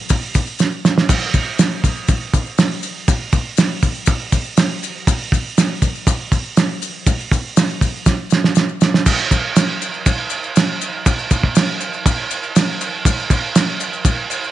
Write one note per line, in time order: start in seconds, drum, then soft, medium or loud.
0.09 kick loud
0.09 open hi-hat medium
0.09 maracas loud
0.22 maracas soft
0.34 kick medium
0.34 open hi-hat medium
0.34 maracas medium
0.47 maracas soft
0.59 snare medium
0.59 maracas medium
0.72 maracas soft
0.85 snare medium
0.85 maracas medium
0.98 snare medium
1.09 kick loud
1.09 open hi-hat medium
1.09 crash loud
1.09 maracas medium
1.22 maracas soft
1.34 kick medium
1.34 open hi-hat medium
1.34 maracas medium
1.59 snare loud
1.59 open hi-hat medium
1.59 maracas medium
1.84 kick medium
1.84 open hi-hat medium
1.84 maracas medium
1.96 maracas soft
2.08 kick loud
2.08 open hi-hat medium
2.08 maracas medium
2.34 kick medium
2.34 open hi-hat medium
2.34 maracas medium
2.46 maracas soft
2.58 snare loud
2.58 open hi-hat medium
2.58 maracas medium
2.83 open hi-hat medium
2.83 maracas medium
3.08 kick loud
3.08 open hi-hat medium
3.08 maracas medium
3.32 kick medium
3.32 open hi-hat medium
3.32 maracas medium
3.57 snare loud
3.57 open hi-hat medium
3.57 maracas medium
3.82 kick medium
3.82 open hi-hat medium
3.82 maracas medium
3.95 maracas soft
4.06 kick loud
4.06 open hi-hat medium
4.06 maracas medium
4.32 kick medium
4.32 open hi-hat medium
4.32 maracas medium
4.45 maracas soft
4.57 snare loud
4.57 open hi-hat loud
4.57 maracas medium
4.83 open hi-hat medium
4.83 maracas medium
5.07 kick loud
5.07 open hi-hat medium
5.07 maracas loud
5.21 maracas soft
5.32 kick medium
5.32 open hi-hat medium
5.32 maracas medium
5.57 snare loud
5.57 open hi-hat medium
5.57 maracas loud
5.82 kick medium
5.82 open hi-hat medium
5.82 maracas medium
5.95 maracas soft
6.07 kick loud
6.07 open hi-hat medium
6.07 maracas loud
6.32 kick medium
6.32 open hi-hat medium
6.32 maracas medium
6.45 maracas soft
6.57 snare loud
6.57 open hi-hat medium
6.57 maracas medium
6.82 open hi-hat medium
6.82 maracas medium
7.07 kick loud
7.07 open hi-hat medium
7.07 maracas loud
7.20 maracas soft
7.32 kick medium
7.32 open hi-hat medium
7.32 maracas medium
7.57 snare loud
7.57 open hi-hat medium
7.57 maracas loud
7.70 maracas soft
7.81 kick medium
7.81 open hi-hat medium
7.81 maracas medium
8.06 kick loud
8.06 snare medium
8.06 maracas loud
8.30 snare medium
8.30 maracas medium
8.44 snare medium
8.55 snare medium
8.55 maracas medium
8.69 maracas soft
8.81 snare loud
8.81 maracas medium
8.94 snare medium
9.06 kick loud
9.06 crash loud
9.06 maracas loud
9.19 maracas soft
9.31 kick loud
9.31 crash medium
9.31 maracas medium
9.56 snare loud
9.56 crash medium
9.56 maracas loud
9.81 crash medium
9.81 maracas medium
9.94 maracas soft
10.06 kick loud
10.06 crash medium
10.06 maracas loud
10.30 crash medium
10.30 maracas medium
10.43 maracas soft
10.56 snare loud
10.56 crash medium
10.56 maracas medium
10.81 crash medium
10.81 maracas medium
11.06 kick loud
11.06 crash medium
11.06 maracas loud
11.19 maracas soft
11.31 kick loud
11.31 crash medium
11.31 maracas medium
11.44 kick medium
11.55 snare loud
11.55 crash medium
11.55 maracas loud
11.80 crash medium
11.80 maracas medium
11.94 maracas soft
12.06 kick loud
12.06 crash medium
12.06 maracas loud
12.31 crash medium
12.31 maracas medium
12.43 maracas soft
12.56 snare loud
12.56 crash loud
12.56 maracas medium
12.81 crash medium
12.81 maracas medium
13.05 kick loud
13.05 crash medium
13.05 maracas loud
13.19 maracas soft
13.30 kick loud
13.30 crash medium
13.30 maracas medium
13.55 snare loud
13.55 crash medium
13.55 maracas loud
13.80 crash medium
13.80 maracas medium
13.93 maracas soft
14.05 kick loud
14.05 crash medium
14.05 maracas loud
14.30 crash medium
14.30 maracas medium
14.44 maracas soft